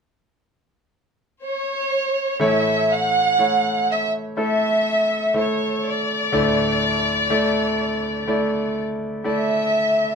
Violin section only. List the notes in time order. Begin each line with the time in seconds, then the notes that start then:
1.43 C#5
2.42 E5
2.93 F#5
3.91 E5
4.41 E5
5.38 C#5
5.87 D5
9.27 E5